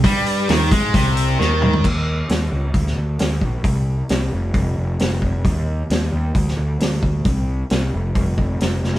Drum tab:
CC |----------------|x---------------|----------------|----------------|
HH |o-o-o-o-o-o-----|----o---o---o---|o---o---o---o---|o---o---o---o---|
SD |----o-------o---|----o----o--o---|----o-------o---|----o----o--o---|
T2 |--------------o-|----------------|----------------|----------------|
FT |---------------o|----------------|----------------|----------------|
BD |o-----o-o-------|o-------o-----o-|o-------o-----o-|o-------o-----o-|

CC |----------------|
HH |o---o---o---o---|
SD |----o-------o-oo|
T2 |----------------|
FT |----------------|
BD |o-------o-o-----|